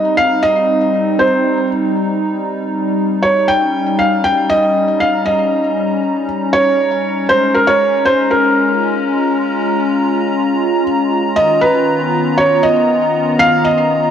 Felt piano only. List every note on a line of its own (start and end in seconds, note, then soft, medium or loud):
0.00 0.14 D#5 medium
0.17 0.44 F5 loud
0.43 1.22 D#5 loud
1.19 1.67 C5 medium
3.23 3.49 C#5 medium
3.48 3.96 G5 loud
3.99 4.23 F5 medium
4.24 4.51 G5 loud
4.50 5.03 D#5 loud
5.00 5.27 F5 medium
5.26 6.24 D#5 medium
6.53 7.26 C#5 loud
7.29 7.56 C5 loud
7.54 7.68 A#4 medium
7.67 8.07 C#5 loud
8.05 8.30 C5 loud
8.31 10.82 A#4 medium
11.36 11.63 D#5 loud
11.61 12.41 B4 medium
12.38 12.65 C#5 loud
12.63 13.42 D#5 loud
13.39 13.66 F5 loud
13.65 14.11 D#5 loud